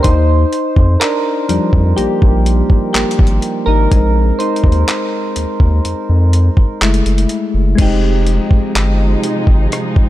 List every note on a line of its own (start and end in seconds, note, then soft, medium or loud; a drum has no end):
0.03 0.45 D#2 loud
0.03 0.97 D#4 medium
0.03 0.96 C5 loud
0.03 kick loud
0.03 closed hi-hat medium
0.53 closed hi-hat medium
0.76 0.97 F2 medium
0.76 kick medium
1.00 1.49 D4 medium
1.00 1.93 A#4 loud
1.00 clap loud
1.00 closed hi-hat medium
1.49 1.59 F2 soft
1.49 2.13 F3 medium
1.49 2.14 G3 soft
1.49 2.14 D4 medium
1.49 closed hi-hat medium
1.73 1.93 F2 medium
1.73 kick medium
1.96 2.08 A#1 soft
1.96 2.91 A#3 medium
1.96 2.90 G4 medium
1.96 closed hi-hat medium
2.22 2.62 A#1 medium
2.22 kick medium
2.46 closed hi-hat medium
2.70 kick medium
2.93 3.04 G#1 soft
2.93 3.63 A#3 medium
2.93 3.69 G4 medium
2.93 clap loud
2.93 closed hi-hat medium
3.11 closed hi-hat medium
3.19 3.39 G#1 medium
3.19 kick medium
3.27 closed hi-hat soft
3.42 closed hi-hat medium
3.66 3.87 G#1 medium
3.66 3.91 D#4 medium
3.66 4.41 A#4 medium
3.91 4.32 A#1 loud
3.91 4.56 G#3 medium
3.91 4.56 C4 soft
3.91 4.40 D#4 medium
3.91 kick loud
3.91 closed hi-hat medium
4.39 6.78 D#4 medium
4.39 6.77 C5 medium
4.39 closed hi-hat medium
4.56 closed hi-hat soft
4.64 4.84 D#2 medium
4.64 kick medium
4.72 closed hi-hat soft
4.89 clap loud
4.89 closed hi-hat medium
5.36 5.46 D#2 soft
5.36 closed hi-hat medium
5.60 5.80 D#2 medium
5.60 kick medium
5.85 5.95 F2 soft
5.85 closed hi-hat medium
6.09 6.50 F2 medium
6.33 closed hi-hat medium
6.57 kick medium
6.82 7.02 F#1 loud
6.82 7.74 G#3 medium
6.82 7.75 A3 soft
6.82 7.75 E4 medium
6.82 clap loud
6.82 closed hi-hat medium
6.94 closed hi-hat medium
7.06 7.26 F#1 medium
7.06 closed hi-hat medium
7.18 closed hi-hat medium
7.29 closed hi-hat medium
7.54 7.75 F#1 medium
7.75 8.39 F1 loud
7.75 10.09 C3 medium
7.75 10.09 F3 medium
7.75 10.09 G#3 medium
7.75 10.09 C4 medium
7.75 10.09 D#4 medium
7.75 kick loud
7.75 closed hi-hat medium
7.75 crash medium
7.80 10.09 D#4 medium
7.80 10.09 G4 medium
8.27 closed hi-hat medium
8.51 kick medium
8.75 9.16 G1 loud
8.75 clap loud
8.75 closed hi-hat medium
9.23 closed hi-hat medium
9.47 9.68 G#1 medium
9.47 kick medium
9.72 cross-stick medium
9.72 closed hi-hat medium
9.96 kick medium